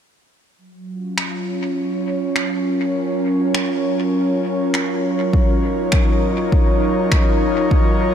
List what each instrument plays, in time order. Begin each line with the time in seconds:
0.58 analog synth pad F#3
0.92 analog synth pad C#4 F4
1.18 finger snap
1.33 analog synth pad C#5
2.36 finger snap
2.58 analog synth pad A#4
3.55 finger snap
4.74 finger snap
5.33 kick
5.43 analog synth pad D#4
5.92 finger snap, kick
6.52 kick
7.12 finger snap, kick
7.71 kick